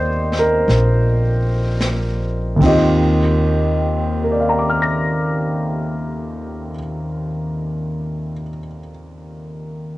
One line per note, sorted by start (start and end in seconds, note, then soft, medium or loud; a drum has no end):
0.00 0.64 D#2 medium
0.00 2.58 A#3 soft
0.00 2.59 C4 soft
0.00 2.61 F4 soft
0.00 2.63 G4 soft
0.00 2.62 C5 medium
0.00 2.62 D5 medium
0.00 2.62 D#5 medium
0.32 snare soft
0.39 2.58 A#4 medium
0.68 2.56 A#1 medium
0.68 brush sweep soft
0.68 snare soft
1.81 snare soft
1.81 hi-hat pedal soft
2.56 6.68 D#2 soft
2.56 6.71 D#3 soft
2.61 6.69 D#2 medium
2.61 6.74 C4 soft
2.61 kick soft
2.61 ride soft
2.65 6.78 F4 soft
2.65 6.80 G4 medium
2.65 6.74 D#5 medium
4.24 8.32 A#4 soft
4.32 8.40 D5 soft
4.40 8.48 F5 soft
4.49 8.58 A#5 soft
4.59 8.67 D6 soft
4.69 8.78 F6 soft
4.82 8.90 A#6 soft